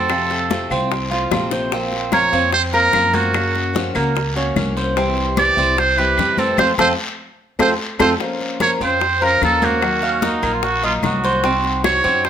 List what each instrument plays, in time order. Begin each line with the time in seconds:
Already playing: upright bass F2, cuban tres C4, steel-string acoustic guitar F#4, muted trumpet A4
0.09 steel-string acoustic guitar C3 F3 A3 C4 F4, high bongo, high conga, long guiro, claves
0.31 cuban tres A4, high bongo, high conga
0.50 steel-string acoustic guitar C3 F3 A3 C4 F4, high bongo, high conga, short guiro
0.70 upright bass C2, steel-string acoustic guitar A3 C4 F4, cuban tres C4, short guiro, claves
0.91 muted steel-string acoustic guitar stroke, high bongo, high conga, long guiro
1.10 steel-string acoustic guitar A3 C4 F4, cuban tres F4, high bongo, high conga
1.31 upright bass A#1, steel-string acoustic guitar C3 F3 A3 C4 F4, high bongo, high conga, short guiro, claves
1.51 cuban tres C5, low bongo, high conga, short guiro
1.72 steel-string acoustic guitar F3 A#3 C4 F4, cuban tres C4, high bongo, high conga, long guiro
1.92 high bongo, high conga
2.12 steel-string acoustic guitar F3 A#3 C4 F4, cuban tres A#4, muted trumpet C#5, high bongo, high conga, short guiro, claves
2.32 upright bass F2, steel-string acoustic guitar A#3 C4 F4, cuban tres C4, high conga, short guiro
2.52 muted trumpet C5, muted steel-string acoustic guitar stroke, high bongo, high conga, long guiro
2.73 steel-string acoustic guitar A#3 C4 F4, muted trumpet A#4, cuban tres A#4, high bongo, high conga
2.93 upright bass F#2, steel-string acoustic guitar F3 A#3 C4 F4, high bongo, low bongo, high conga, short guiro, claves
3.13 cuban tres A#3, muted trumpet F#4, high bongo, high conga, short guiro
3.33 steel-string acoustic guitar C#3 A#3 C#4 F#4, high bongo, high conga, long guiro, claves
3.55 high bongo, high conga
3.73 steel-string acoustic guitar C#3 F3 A#3 C#4 F#4, high bongo, high conga, short guiro
3.94 upright bass C#2, cuban tres A#3, steel-string acoustic guitar A#3 C#4 F#4, short guiro, claves
4.15 muted steel-string acoustic guitar stroke, high bongo, high conga, long guiro
4.36 steel-string acoustic guitar A#3 C#4 F#4, cuban tres C#4, high bongo, high conga
4.56 upright bass C2, steel-string acoustic guitar A#3 C#4 F#4, high bongo, low bongo, high conga, short guiro, claves
4.77 cuban tres C5, high bongo, high conga, short guiro
4.96 steel-string acoustic guitar C3 E3 G3 C4 E4, cuban tres C4, high bongo, high conga, long guiro
5.17 high bongo, high conga
5.36 steel-string acoustic guitar C3 E3 G3 C4 E4, cuban tres G4, muted trumpet D5, high bongo, high conga, short guiro, claves
5.57 upright bass C2, steel-string acoustic guitar G3 C4 E4, cuban tres C4, high conga, short guiro
5.77 muted trumpet C5, muted steel-string acoustic guitar stroke, high bongo, high conga, long guiro
5.97 steel-string acoustic guitar G3 C4 E4, cuban tres G4, muted trumpet B4, high bongo, high conga
6.17 upright bass F2, steel-string acoustic guitar C3 E3 G3 C4 E4, high bongo, low bongo, high conga, short guiro, claves
6.38 cuban tres C4, muted trumpet A4, high bongo, high conga, short guiro
6.57 upright bass F2, steel-string acoustic guitar F3 A3 C4, cuban tres C4 F4 A4, muted trumpet C5, high bongo, high conga, long guiro, claves
6.78 upright bass F2, steel-string acoustic guitar F3 A3 C4, cuban tres C4 F4 A4, muted trumpet C5, high bongo, high conga, long guiro, claves
7.59 upright bass F2, steel-string acoustic guitar F3 A3 C4, cuban tres C4 F4 A4, muted trumpet C5, high bongo, high conga, long guiro, claves
7.99 upright bass F2, steel-string acoustic guitar F3 A3 C4, cuban tres C4 F4 A4, muted trumpet C5, high bongo, high conga, long guiro, claves
8.20 steel-string acoustic guitar F3 A#3 C#4 F4 C5, high bongo, high conga, long guiro
8.41 high bongo, high conga
8.60 steel-string acoustic guitar F3 A#3 C#4 F4 C5, cuban tres A#4, muted trumpet C#5, high bongo, high conga, short guiro, claves
8.80 upright bass F2, cuban tres C4, steel-string acoustic guitar C#4 F4 C5, muted trumpet C5, high conga, short guiro
9.00 muted steel-string acoustic guitar stroke, high bongo, high conga, long guiro
9.21 steel-string acoustic guitar C#4 F4 C5, cuban tres A#4, muted trumpet A#4, high bongo, high conga
9.41 upright bass D#2, steel-string acoustic guitar F3 A#3 C#4 F4 C5, muted trumpet A4, high bongo, low bongo, high conga, short guiro, claves
9.62 cuban tres A#3, muted trumpet F#4, high bongo, high conga, short guiro
9.81 steel-string acoustic guitar D#3 F#3 A#3, high bongo, high conga, long guiro, claves
10.02 trumpet C#4, cuban tres F5, high bongo, high conga
10.21 steel-string acoustic guitar D#3 F#3 A#3 F4, trumpet D#4, high bongo, high conga, short guiro
10.41 upright bass A#1, steel-string acoustic guitar F#3 A#3 F4, cuban tres A#3, short guiro, claves
10.54 trumpet F4
10.62 trumpet F#4, muted steel-string acoustic guitar stroke, high bongo, high conga, long guiro
10.82 steel-string acoustic guitar F#3 A#3 F4, cuban tres D#4, trumpet F4, high bongo, high conga
11.02 upright bass C2, steel-string acoustic guitar D#3 F#3 A#3, trumpet F#4, high bongo, low bongo, high conga, short guiro, claves
11.24 cuban tres C5, high bongo, high conga, short guiro
11.43 steel-string acoustic guitar C4 D#4 F#4, cuban tres C4, high bongo, high conga, long guiro
11.64 high bongo, high conga
11.84 steel-string acoustic guitar C4 D#4 F#4, cuban tres F#4, muted trumpet C#5, high bongo, high conga, short guiro, claves
12.04 upright bass F#2, cuban tres C4, steel-string acoustic guitar D#4 F#4, high conga, short guiro
12.25 muted trumpet C5, muted steel-string acoustic guitar stroke, high bongo, high conga, long guiro